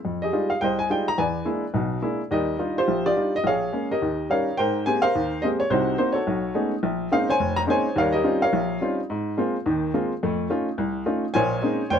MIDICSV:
0, 0, Header, 1, 2, 480
1, 0, Start_track
1, 0, Key_signature, -3, "major"
1, 0, Tempo, 282486
1, 73, Time_signature, 4, 2, 24, 8
1, 7779, Key_signature, -4, "major"
1, 20378, End_track
2, 0, Start_track
2, 0, Title_t, "Upright piano"
2, 0, Program_c, 0, 0
2, 80, Note_on_c, 0, 41, 52
2, 374, Note_on_c, 0, 75, 69
2, 401, Note_on_c, 0, 68, 46
2, 403, Note_on_c, 0, 67, 47
2, 488, Note_off_c, 0, 41, 0
2, 546, Note_on_c, 0, 55, 47
2, 552, Note_on_c, 0, 56, 39
2, 558, Note_on_c, 0, 63, 41
2, 563, Note_on_c, 0, 65, 49
2, 846, Note_on_c, 0, 77, 68
2, 853, Note_off_c, 0, 55, 0
2, 856, Note_off_c, 0, 56, 0
2, 859, Note_off_c, 0, 63, 0
2, 861, Note_off_c, 0, 65, 0
2, 861, Note_off_c, 0, 75, 0
2, 1037, Note_on_c, 0, 79, 76
2, 1047, Note_off_c, 0, 77, 0
2, 1051, Note_on_c, 0, 36, 59
2, 1081, Note_on_c, 0, 75, 57
2, 1083, Note_on_c, 0, 72, 53
2, 1276, Note_off_c, 0, 68, 0
2, 1277, Note_off_c, 0, 67, 0
2, 1328, Note_off_c, 0, 79, 0
2, 1338, Note_on_c, 0, 80, 78
2, 1455, Note_off_c, 0, 36, 0
2, 1527, Note_on_c, 0, 55, 48
2, 1528, Note_on_c, 0, 56, 43
2, 1530, Note_on_c, 0, 63, 42
2, 1534, Note_off_c, 0, 80, 0
2, 1536, Note_on_c, 0, 65, 50
2, 1548, Note_on_c, 0, 79, 76
2, 1824, Note_off_c, 0, 79, 0
2, 1825, Note_off_c, 0, 55, 0
2, 1825, Note_off_c, 0, 56, 0
2, 1827, Note_off_c, 0, 63, 0
2, 1830, Note_off_c, 0, 65, 0
2, 1838, Note_on_c, 0, 82, 88
2, 1956, Note_off_c, 0, 75, 0
2, 1958, Note_off_c, 0, 72, 0
2, 2006, Note_off_c, 0, 82, 0
2, 2007, Note_on_c, 0, 80, 75
2, 2008, Note_on_c, 0, 40, 56
2, 2012, Note_on_c, 0, 71, 53
2, 2023, Note_on_c, 0, 74, 53
2, 2415, Note_off_c, 0, 40, 0
2, 2452, Note_off_c, 0, 80, 0
2, 2466, Note_on_c, 0, 56, 49
2, 2470, Note_on_c, 0, 58, 42
2, 2474, Note_on_c, 0, 64, 51
2, 2477, Note_on_c, 0, 62, 46
2, 2777, Note_off_c, 0, 56, 0
2, 2779, Note_off_c, 0, 58, 0
2, 2781, Note_off_c, 0, 64, 0
2, 2782, Note_off_c, 0, 62, 0
2, 2902, Note_off_c, 0, 71, 0
2, 2909, Note_off_c, 0, 74, 0
2, 2953, Note_on_c, 0, 35, 59
2, 2961, Note_on_c, 0, 47, 57
2, 3369, Note_off_c, 0, 35, 0
2, 3373, Note_off_c, 0, 47, 0
2, 3432, Note_on_c, 0, 56, 47
2, 3439, Note_on_c, 0, 58, 44
2, 3440, Note_on_c, 0, 62, 40
2, 3440, Note_on_c, 0, 64, 55
2, 3741, Note_off_c, 0, 56, 0
2, 3745, Note_off_c, 0, 58, 0
2, 3745, Note_off_c, 0, 62, 0
2, 3745, Note_off_c, 0, 64, 0
2, 3922, Note_on_c, 0, 39, 60
2, 3925, Note_on_c, 0, 55, 59
2, 3937, Note_on_c, 0, 75, 76
2, 3961, Note_on_c, 0, 67, 52
2, 3964, Note_on_c, 0, 70, 54
2, 4335, Note_off_c, 0, 39, 0
2, 4337, Note_off_c, 0, 55, 0
2, 4387, Note_on_c, 0, 55, 46
2, 4395, Note_on_c, 0, 62, 45
2, 4405, Note_on_c, 0, 65, 49
2, 4407, Note_on_c, 0, 63, 43
2, 4643, Note_off_c, 0, 75, 0
2, 4699, Note_off_c, 0, 65, 0
2, 4700, Note_off_c, 0, 55, 0
2, 4705, Note_off_c, 0, 62, 0
2, 4710, Note_off_c, 0, 63, 0
2, 4716, Note_off_c, 0, 67, 0
2, 4725, Note_on_c, 0, 65, 53
2, 4726, Note_on_c, 0, 72, 85
2, 4741, Note_on_c, 0, 67, 55
2, 4843, Note_off_c, 0, 70, 0
2, 4891, Note_on_c, 0, 34, 59
2, 5158, Note_off_c, 0, 72, 0
2, 5177, Note_off_c, 0, 65, 0
2, 5177, Note_off_c, 0, 67, 0
2, 5200, Note_on_c, 0, 74, 95
2, 5202, Note_on_c, 0, 65, 57
2, 5203, Note_on_c, 0, 67, 60
2, 5302, Note_off_c, 0, 34, 0
2, 5363, Note_off_c, 0, 65, 0
2, 5379, Note_on_c, 0, 62, 41
2, 5380, Note_on_c, 0, 55, 46
2, 5381, Note_on_c, 0, 63, 45
2, 5389, Note_on_c, 0, 65, 50
2, 5678, Note_off_c, 0, 62, 0
2, 5679, Note_off_c, 0, 55, 0
2, 5679, Note_off_c, 0, 63, 0
2, 5682, Note_off_c, 0, 74, 0
2, 5683, Note_off_c, 0, 65, 0
2, 5707, Note_on_c, 0, 75, 85
2, 5822, Note_off_c, 0, 67, 0
2, 5842, Note_on_c, 0, 34, 55
2, 5868, Note_off_c, 0, 75, 0
2, 5894, Note_on_c, 0, 77, 81
2, 5896, Note_on_c, 0, 68, 62
2, 5899, Note_on_c, 0, 73, 62
2, 6258, Note_off_c, 0, 34, 0
2, 6331, Note_on_c, 0, 56, 45
2, 6335, Note_on_c, 0, 58, 42
2, 6339, Note_on_c, 0, 61, 50
2, 6636, Note_off_c, 0, 56, 0
2, 6637, Note_off_c, 0, 58, 0
2, 6639, Note_off_c, 0, 61, 0
2, 6650, Note_on_c, 0, 70, 53
2, 6651, Note_on_c, 0, 67, 51
2, 6652, Note_on_c, 0, 75, 71
2, 6660, Note_off_c, 0, 77, 0
2, 6772, Note_off_c, 0, 68, 0
2, 6774, Note_off_c, 0, 73, 0
2, 6827, Note_on_c, 0, 39, 54
2, 7233, Note_off_c, 0, 39, 0
2, 7269, Note_off_c, 0, 75, 0
2, 7301, Note_on_c, 0, 55, 46
2, 7303, Note_off_c, 0, 70, 0
2, 7303, Note_on_c, 0, 61, 41
2, 7314, Note_on_c, 0, 63, 46
2, 7318, Note_on_c, 0, 77, 72
2, 7320, Note_on_c, 0, 73, 50
2, 7328, Note_on_c, 0, 70, 49
2, 7531, Note_off_c, 0, 67, 0
2, 7602, Note_off_c, 0, 55, 0
2, 7603, Note_off_c, 0, 61, 0
2, 7608, Note_off_c, 0, 63, 0
2, 7757, Note_off_c, 0, 73, 0
2, 7762, Note_off_c, 0, 70, 0
2, 7773, Note_on_c, 0, 79, 87
2, 7787, Note_on_c, 0, 72, 65
2, 7797, Note_on_c, 0, 44, 60
2, 7801, Note_on_c, 0, 70, 64
2, 7803, Note_off_c, 0, 77, 0
2, 8199, Note_off_c, 0, 44, 0
2, 8223, Note_off_c, 0, 79, 0
2, 8257, Note_on_c, 0, 80, 90
2, 8270, Note_on_c, 0, 56, 50
2, 8273, Note_on_c, 0, 60, 46
2, 8275, Note_on_c, 0, 58, 47
2, 8283, Note_on_c, 0, 67, 55
2, 8514, Note_off_c, 0, 70, 0
2, 8514, Note_off_c, 0, 72, 0
2, 8521, Note_off_c, 0, 80, 0
2, 8528, Note_on_c, 0, 77, 98
2, 8540, Note_on_c, 0, 70, 65
2, 8540, Note_on_c, 0, 72, 64
2, 8567, Note_off_c, 0, 56, 0
2, 8569, Note_off_c, 0, 58, 0
2, 8569, Note_off_c, 0, 60, 0
2, 8573, Note_off_c, 0, 67, 0
2, 8754, Note_on_c, 0, 39, 60
2, 9158, Note_off_c, 0, 39, 0
2, 9208, Note_on_c, 0, 75, 78
2, 9226, Note_on_c, 0, 56, 52
2, 9235, Note_off_c, 0, 77, 0
2, 9236, Note_on_c, 0, 58, 48
2, 9240, Note_on_c, 0, 60, 47
2, 9249, Note_on_c, 0, 67, 54
2, 9293, Note_off_c, 0, 75, 0
2, 9434, Note_off_c, 0, 70, 0
2, 9434, Note_off_c, 0, 72, 0
2, 9511, Note_on_c, 0, 73, 81
2, 9525, Note_off_c, 0, 56, 0
2, 9530, Note_off_c, 0, 58, 0
2, 9532, Note_off_c, 0, 60, 0
2, 9537, Note_off_c, 0, 67, 0
2, 9689, Note_on_c, 0, 36, 64
2, 9692, Note_off_c, 0, 73, 0
2, 9693, Note_on_c, 0, 48, 65
2, 9695, Note_on_c, 0, 72, 78
2, 9724, Note_on_c, 0, 66, 57
2, 9727, Note_on_c, 0, 63, 57
2, 10104, Note_off_c, 0, 36, 0
2, 10106, Note_off_c, 0, 48, 0
2, 10140, Note_off_c, 0, 72, 0
2, 10159, Note_off_c, 0, 63, 0
2, 10165, Note_on_c, 0, 72, 78
2, 10172, Note_on_c, 0, 58, 51
2, 10177, Note_on_c, 0, 60, 46
2, 10184, Note_on_c, 0, 63, 56
2, 10407, Note_on_c, 0, 73, 73
2, 10434, Note_off_c, 0, 66, 0
2, 10448, Note_on_c, 0, 69, 53
2, 10459, Note_on_c, 0, 66, 53
2, 10464, Note_off_c, 0, 72, 0
2, 10478, Note_off_c, 0, 58, 0
2, 10480, Note_off_c, 0, 60, 0
2, 10484, Note_off_c, 0, 63, 0
2, 10654, Note_on_c, 0, 35, 66
2, 11067, Note_off_c, 0, 35, 0
2, 11120, Note_on_c, 0, 56, 48
2, 11126, Note_on_c, 0, 59, 46
2, 11129, Note_on_c, 0, 57, 48
2, 11131, Note_on_c, 0, 61, 46
2, 11138, Note_on_c, 0, 63, 56
2, 11327, Note_off_c, 0, 73, 0
2, 11348, Note_off_c, 0, 69, 0
2, 11354, Note_off_c, 0, 66, 0
2, 11432, Note_off_c, 0, 56, 0
2, 11435, Note_off_c, 0, 59, 0
2, 11437, Note_off_c, 0, 57, 0
2, 11437, Note_off_c, 0, 61, 0
2, 11441, Note_off_c, 0, 63, 0
2, 11605, Note_on_c, 0, 34, 67
2, 12022, Note_off_c, 0, 34, 0
2, 12092, Note_on_c, 0, 56, 56
2, 12092, Note_on_c, 0, 58, 48
2, 12096, Note_on_c, 0, 61, 52
2, 12097, Note_on_c, 0, 60, 51
2, 12105, Note_on_c, 0, 63, 62
2, 12107, Note_on_c, 0, 77, 87
2, 12366, Note_off_c, 0, 77, 0
2, 12396, Note_on_c, 0, 73, 66
2, 12397, Note_off_c, 0, 58, 0
2, 12398, Note_off_c, 0, 56, 0
2, 12399, Note_on_c, 0, 72, 68
2, 12400, Note_off_c, 0, 60, 0
2, 12400, Note_off_c, 0, 61, 0
2, 12404, Note_off_c, 0, 63, 0
2, 12410, Note_on_c, 0, 80, 97
2, 12573, Note_on_c, 0, 29, 64
2, 12853, Note_on_c, 0, 82, 98
2, 12889, Note_off_c, 0, 80, 0
2, 12938, Note_off_c, 0, 82, 0
2, 12985, Note_off_c, 0, 29, 0
2, 13029, Note_on_c, 0, 56, 52
2, 13035, Note_on_c, 0, 60, 47
2, 13037, Note_on_c, 0, 58, 50
2, 13040, Note_on_c, 0, 61, 49
2, 13049, Note_on_c, 0, 63, 59
2, 13069, Note_off_c, 0, 73, 0
2, 13076, Note_off_c, 0, 72, 0
2, 13085, Note_on_c, 0, 80, 84
2, 13094, Note_on_c, 0, 73, 60
2, 13101, Note_on_c, 0, 72, 64
2, 13346, Note_off_c, 0, 56, 0
2, 13348, Note_off_c, 0, 60, 0
2, 13349, Note_off_c, 0, 58, 0
2, 13351, Note_off_c, 0, 61, 0
2, 13356, Note_off_c, 0, 63, 0
2, 13519, Note_off_c, 0, 80, 0
2, 13521, Note_on_c, 0, 39, 67
2, 13521, Note_on_c, 0, 55, 67
2, 13524, Note_off_c, 0, 73, 0
2, 13528, Note_off_c, 0, 72, 0
2, 13563, Note_on_c, 0, 77, 84
2, 13589, Note_on_c, 0, 70, 65
2, 13590, Note_on_c, 0, 73, 58
2, 13805, Note_on_c, 0, 75, 81
2, 13813, Note_off_c, 0, 77, 0
2, 13821, Note_off_c, 0, 70, 0
2, 13836, Note_on_c, 0, 67, 56
2, 13846, Note_on_c, 0, 70, 60
2, 13938, Note_off_c, 0, 39, 0
2, 13938, Note_off_c, 0, 55, 0
2, 13996, Note_on_c, 0, 55, 50
2, 14003, Note_on_c, 0, 61, 48
2, 14004, Note_on_c, 0, 60, 48
2, 14007, Note_on_c, 0, 65, 58
2, 14010, Note_on_c, 0, 63, 48
2, 14257, Note_off_c, 0, 75, 0
2, 14308, Note_off_c, 0, 55, 0
2, 14310, Note_on_c, 0, 77, 87
2, 14311, Note_off_c, 0, 61, 0
2, 14312, Note_off_c, 0, 60, 0
2, 14313, Note_off_c, 0, 65, 0
2, 14314, Note_off_c, 0, 73, 0
2, 14315, Note_off_c, 0, 63, 0
2, 14318, Note_off_c, 0, 70, 0
2, 14340, Note_on_c, 0, 73, 58
2, 14344, Note_on_c, 0, 70, 56
2, 14492, Note_on_c, 0, 34, 64
2, 14719, Note_off_c, 0, 67, 0
2, 14903, Note_off_c, 0, 34, 0
2, 14971, Note_on_c, 0, 55, 48
2, 14979, Note_on_c, 0, 60, 45
2, 14982, Note_on_c, 0, 61, 43
2, 14989, Note_on_c, 0, 63, 44
2, 14992, Note_on_c, 0, 65, 57
2, 15195, Note_off_c, 0, 77, 0
2, 15211, Note_off_c, 0, 73, 0
2, 15214, Note_off_c, 0, 70, 0
2, 15274, Note_off_c, 0, 55, 0
2, 15278, Note_off_c, 0, 60, 0
2, 15279, Note_off_c, 0, 61, 0
2, 15283, Note_off_c, 0, 63, 0
2, 15284, Note_off_c, 0, 65, 0
2, 15458, Note_on_c, 0, 44, 63
2, 15865, Note_off_c, 0, 44, 0
2, 15927, Note_on_c, 0, 56, 52
2, 15933, Note_on_c, 0, 60, 48
2, 15936, Note_on_c, 0, 58, 48
2, 15946, Note_on_c, 0, 65, 58
2, 16231, Note_off_c, 0, 56, 0
2, 16234, Note_off_c, 0, 60, 0
2, 16235, Note_off_c, 0, 58, 0
2, 16240, Note_off_c, 0, 65, 0
2, 16411, Note_on_c, 0, 39, 68
2, 16414, Note_on_c, 0, 51, 64
2, 16819, Note_off_c, 0, 39, 0
2, 16821, Note_off_c, 0, 51, 0
2, 16888, Note_on_c, 0, 56, 53
2, 16890, Note_on_c, 0, 58, 50
2, 16891, Note_on_c, 0, 60, 47
2, 16894, Note_on_c, 0, 65, 57
2, 17189, Note_off_c, 0, 56, 0
2, 17190, Note_off_c, 0, 58, 0
2, 17190, Note_off_c, 0, 60, 0
2, 17192, Note_off_c, 0, 65, 0
2, 17383, Note_on_c, 0, 41, 64
2, 17388, Note_on_c, 0, 57, 65
2, 17784, Note_off_c, 0, 41, 0
2, 17787, Note_off_c, 0, 57, 0
2, 17837, Note_on_c, 0, 57, 49
2, 17845, Note_on_c, 0, 61, 48
2, 17850, Note_on_c, 0, 63, 45
2, 17851, Note_on_c, 0, 65, 61
2, 18142, Note_off_c, 0, 57, 0
2, 18146, Note_off_c, 0, 61, 0
2, 18149, Note_off_c, 0, 63, 0
2, 18149, Note_off_c, 0, 65, 0
2, 18318, Note_on_c, 0, 36, 70
2, 18729, Note_off_c, 0, 36, 0
2, 18791, Note_on_c, 0, 57, 54
2, 18792, Note_on_c, 0, 61, 46
2, 18797, Note_on_c, 0, 63, 47
2, 18797, Note_on_c, 0, 65, 58
2, 19097, Note_off_c, 0, 57, 0
2, 19097, Note_off_c, 0, 61, 0
2, 19100, Note_off_c, 0, 63, 0
2, 19100, Note_off_c, 0, 65, 0
2, 19263, Note_on_c, 0, 80, 99
2, 19284, Note_on_c, 0, 34, 64
2, 19286, Note_on_c, 0, 46, 70
2, 19296, Note_on_c, 0, 72, 68
2, 19304, Note_on_c, 0, 73, 71
2, 19690, Note_off_c, 0, 34, 0
2, 19691, Note_off_c, 0, 46, 0
2, 19756, Note_on_c, 0, 56, 54
2, 19757, Note_on_c, 0, 58, 51
2, 19760, Note_on_c, 0, 63, 57
2, 19761, Note_on_c, 0, 60, 47
2, 19768, Note_on_c, 0, 61, 49
2, 20057, Note_off_c, 0, 56, 0
2, 20058, Note_off_c, 0, 58, 0
2, 20060, Note_off_c, 0, 60, 0
2, 20060, Note_off_c, 0, 63, 0
2, 20064, Note_off_c, 0, 61, 0
2, 20178, Note_off_c, 0, 72, 0
2, 20182, Note_off_c, 0, 73, 0
2, 20227, Note_on_c, 0, 79, 97
2, 20232, Note_on_c, 0, 29, 68
2, 20257, Note_off_c, 0, 80, 0
2, 20259, Note_on_c, 0, 72, 66
2, 20272, Note_on_c, 0, 73, 70
2, 20312, Note_off_c, 0, 79, 0
2, 20378, Note_off_c, 0, 29, 0
2, 20378, Note_off_c, 0, 72, 0
2, 20378, Note_off_c, 0, 73, 0
2, 20378, End_track
0, 0, End_of_file